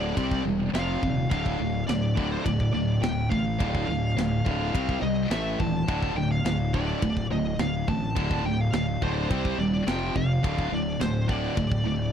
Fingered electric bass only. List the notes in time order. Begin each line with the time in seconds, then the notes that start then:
Already playing: D1
0.17 C2
0.45 E1
0.74 F1
1.03 D#1
1.32 D1
1.60 D1
1.89 D1
2.46 D1
2.74 D1
3.02 D1
3.32 A1
3.60 D1
3.88 D1
4.17 D1
4.46 D1
4.75 C2
5.02 C2
5.30 A1
5.60 D#1
5.89 D1
6.15 D1
6.45 D1
7.03 D1
7.30 D1
7.58 D1
7.88 A1
8.16 D1
8.44 D1
8.73 D1
9.02 D1
9.31 C2
9.58 D#1
9.87 F1
10.16 F1
10.44 D1
10.72 D1
11.01 D1
11.57 D1
11.85 D1